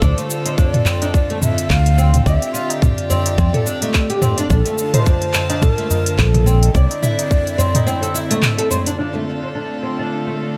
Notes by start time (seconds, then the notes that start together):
Already playing: D3 F4 A4
0.02 D2 C4 D4 C5, kick, mid tom, cabasa
0.18 A3, closed hi-hat, cabasa
0.30 cabasa
0.46 C5, closed hi-hat, tabla na, cabasa
0.58 D4 D5, kick, tabla ge, cabasa
0.74 closed hi-hat, mid tom
0.85 C4, clap, tabla tin, tabla ge, cabasa
1.02 D4, closed hi-hat, tabla na, cabasa
1.14 D5, kick, cabasa
1.30 A3, closed hi-hat
1.42 E5, mid tom, tabla na, tabla ge, cabasa
1.58 closed hi-hat, cabasa
1.70 D2 F5, kick, clap, cabasa
1.86 closed hi-hat, tabla tin
1.98 C4, cabasa
2.14 closed hi-hat, mid tom, tabla tin, cabasa
2.26 D2 G4 D5 E5, kick, cabasa
2.42 closed hi-hat, cabasa
2.54 F4, cabasa
2.70 closed hi-hat, tabla na, cabasa
2.82 D5, kick, mid tom, tabla ge, cabasa
2.98 closed hi-hat
3.10 C4, tabla tin, tabla ge, cabasa
3.26 closed hi-hat, tabla na, cabasa
3.38 F2 C4, kick, cabasa
3.54 A4, closed hi-hat, mid tom
3.66 D4, cabasa
3.82 A3, closed hi-hat, tabla na, cabasa
3.94 kick, clap, cabasa
4.10 G4, closed hi-hat
4.22 C4, mid tom, tabla ge, cabasa
4.38 D4, closed hi-hat, cabasa
4.50 A#1 D3 D4 F4 A4 A5, kick, cabasa
4.66 A3, closed hi-hat, cabasa
4.78 cabasa
4.94 C5, closed hi-hat, mid tom, tabla na, cabasa
5.06 D4 C5, kick, tabla ge, cabasa
5.22 closed hi-hat
5.34 C4, clap, tabla tin, tabla ge, cabasa
5.50 D4, closed hi-hat, tabla na, cabasa
5.62 A#4, kick, mid tom, cabasa
5.78 A3, closed hi-hat
5.91 tabla na, tabla ge, cabasa
6.06 closed hi-hat, cabasa
6.18 A#1 A4, kick, clap, cabasa
6.34 closed hi-hat, mid tom, tabla tin
6.46 C4, cabasa
6.62 closed hi-hat, tabla tin, cabasa
6.74 C2 C4 E4 D5, kick, cabasa
6.91 closed hi-hat, tabla na, cabasa
7.03 E4, mid tom, tabla tin, cabasa
7.19 closed hi-hat, tabla na, cabasa
7.30 kick, tabla ge, cabasa
7.47 closed hi-hat, cabasa
7.58 C4, tabla tin, tabla ge, cabasa
7.75 closed hi-hat, mid tom, tabla na, cabasa
7.87 C4, cabasa
8.02 A4, closed hi-hat, cabasa
8.14 E4, cabasa
8.31 A3, closed hi-hat, tabla na, cabasa
8.43 clap, mid tom, cabasa
8.58 A4, closed hi-hat
8.71 C5, tabla ge, cabasa
8.86 D4, closed hi-hat, cabasa
8.98 D3 A3 C4 D4 F4 A4
9.15 A3
9.43 C5
9.55 D4
9.83 C4
9.99 D4
10.27 A3